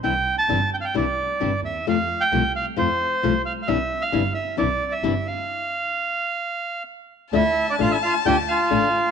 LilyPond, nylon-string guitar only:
\new Staff \with { instrumentName = "Nylon-string guitar" } { \time 4/4 \key c \mixolydian \tempo 4 = 132 <c e g d' e'>8 r8 <c e g d' e'>8 r8 <c e g d' e'>8 r8 <c e g d' e'>8 r8 | <c f a c' f'>8 r8 <c f a c' f'>8 r8 <c f a c' f'>8 r8 <c f a c' f'>8 r8 | <c e g d' e'>8 r8 <c e g d' e'>8 r8 <c e g d' e'>8 r8 <c e g d' e'>8 r8 | r1 |
<d a d' f'>8 r8 <d a d' f'>8 r8 <d a d' f'>8 r8 <d a d' f'>8 r8 | }